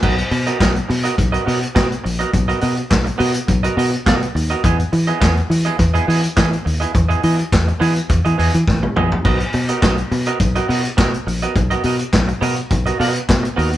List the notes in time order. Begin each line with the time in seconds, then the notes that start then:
0.03 B1 B3 F#4 A#4 D#5, kick, crash
0.18 muted clean electric guitar stroke, closed hi-hat
0.31 B2, muted clean electric guitar stroke, open hi-hat
0.46 B3 F#4 A#4 D#5, closed hi-hat
0.60 B1 B3 F#4 A#4 D#5, kick, snare, clap, closed hi-hat
0.75 muted clean electric guitar stroke, closed hi-hat
0.88 B2, muted clean electric guitar stroke, open hi-hat
1.04 B3 F#4 A#4 D#5, closed hi-hat
1.17 B1, muted clean electric guitar stroke, kick, closed hi-hat
1.32 B3 F#4 A#4 D#5, closed hi-hat
1.46 B2 B3 F#4 A#4 D#5, open hi-hat
1.61 muted clean electric guitar stroke, closed hi-hat
1.75 B2 B3 F#4 A#4 D#5, kick, snare, clap, closed hi-hat
1.90 muted clean electric guitar stroke, closed hi-hat
2.04 A#1, muted clean electric guitar stroke, open hi-hat
2.19 B3 F#4 A#4 D#5, closed hi-hat
2.33 B1, muted clean electric guitar stroke, kick, closed hi-hat
2.48 B3 F#4 A#4 D#5, closed hi-hat
2.61 B2 B3 F#4 A#4 D#5, open hi-hat
2.76 muted clean electric guitar stroke, closed hi-hat
2.90 B1, muted clean electric guitar stroke, kick, snare, clap, closed hi-hat
3.04 muted clean electric guitar stroke, closed hi-hat
3.18 B2 B3 F#4 A#4 D#5, open hi-hat
3.34 muted clean electric guitar stroke, closed hi-hat
3.47 B1, muted clean electric guitar stroke, kick, closed hi-hat
3.63 B3 F#4 A#4 D#5, closed hi-hat
3.77 B2 B3 F#4 A#4 D#5, open hi-hat
3.92 muted clean electric guitar stroke, closed hi-hat
4.06 B2 B3 F#4 A#4 D#5, kick, snare, clap, closed hi-hat
4.22 muted clean electric guitar stroke, closed hi-hat
4.35 D#2, muted clean electric guitar stroke, open hi-hat
4.50 B3 F#4 A#4 D#5, closed hi-hat
4.64 E2 B3 E4 G#4 D#5, kick, closed hi-hat
4.80 muted clean electric guitar stroke, closed hi-hat
4.92 E3, muted clean electric guitar stroke, open hi-hat
5.07 B3 E4 G#4 D#5, closed hi-hat
5.20 E2 B3 E4 G#4 D#5, kick, snare, clap, closed hi-hat
5.36 muted clean electric guitar stroke, closed hi-hat
5.50 E3, muted clean electric guitar stroke, open hi-hat
5.65 B3 E4 G#4 D#5, closed hi-hat
5.78 E2, muted clean electric guitar stroke, kick, closed hi-hat
5.94 B3 E4 G#4 D#5, closed hi-hat
6.07 E3 B3 E4 G#4 D#5, open hi-hat
6.24 closed hi-hat
6.37 E3 B3 E4 G#4 D#5, kick, snare, clap, closed hi-hat
6.52 muted clean electric guitar stroke, closed hi-hat
6.65 D#2, muted clean electric guitar stroke, open hi-hat
6.80 B3 E4 G#4 D#5, closed hi-hat
6.94 E2, muted clean electric guitar stroke, kick, closed hi-hat
7.09 B3 E4 G#4 D#5, closed hi-hat
7.22 E3 B3 E4 G#4 D#5, open hi-hat
7.39 muted clean electric guitar stroke, closed hi-hat
7.52 E2, muted clean electric guitar stroke, kick, snare, clap, closed hi-hat
7.68 muted clean electric guitar stroke, closed hi-hat
7.80 E3 B3 E4 G#4 D#5, open hi-hat
7.96 muted clean electric guitar stroke, closed hi-hat
8.09 E2, muted clean electric guitar stroke, kick, closed hi-hat
8.25 E3 B3 E4 G#4 D#5, closed hi-hat
8.38 E2 B3 E4 G#4 D#5, open hi-hat
8.53 E3, muted clean electric guitar stroke, closed hi-hat
8.68 A1, kick, snare
8.83 muted clean electric guitar stroke, high tom
8.96 A#1 B3 E4 G#4 D#5, mid tom
9.12 muted clean electric guitar stroke, floor tom
9.25 B1 B3 F#4 A#4 D#5, kick, crash
9.40 muted clean electric guitar stroke, closed hi-hat
9.53 B2, muted clean electric guitar stroke, open hi-hat
9.69 B3 F#4 A#4 D#5, closed hi-hat
9.82 B1 B3 F#4 A#4 D#5, kick, snare, clap, closed hi-hat
9.98 muted clean electric guitar stroke, closed hi-hat
10.11 B2, muted clean electric guitar stroke, open hi-hat
10.26 B3 F#4 A#4 D#5, closed hi-hat
10.40 B1, muted clean electric guitar stroke, kick, closed hi-hat
10.55 B3 F#4 A#4 D#5, closed hi-hat
10.68 B2 B3 F#4 A#4 D#5, open hi-hat
10.84 muted clean electric guitar stroke, closed hi-hat
10.97 B2 B3 F#4 A#4 D#5, kick, snare, clap, closed hi-hat
11.13 muted clean electric guitar stroke, closed hi-hat
11.27 A#1, muted clean electric guitar stroke, open hi-hat
11.42 B3 F#4 A#4 D#5, closed hi-hat
11.56 B1, muted clean electric guitar stroke, kick, closed hi-hat
11.70 B3 F#4 A#4 D#5, closed hi-hat
11.83 B2 B3 F#4 A#4 D#5, open hi-hat
11.99 muted clean electric guitar stroke, closed hi-hat
12.13 B1, muted clean electric guitar stroke, kick, snare, clap, closed hi-hat
12.28 muted clean electric guitar stroke, closed hi-hat
12.41 B2 B3 F#4 A#4 D#5, open hi-hat
12.56 muted clean electric guitar stroke, closed hi-hat
12.70 B1, muted clean electric guitar stroke, kick, closed hi-hat
12.86 B3 F#4 A#4 D#5, closed hi-hat
12.99 B2 B3 F#4 A#4 D#5, open hi-hat
13.15 muted clean electric guitar stroke, closed hi-hat
13.29 B2, kick, snare, clap, closed hi-hat
13.43 muted clean electric guitar stroke, closed hi-hat
13.56 D#2 B3 F#4 A#4 D#5, open hi-hat
13.72 muted clean electric guitar stroke, closed hi-hat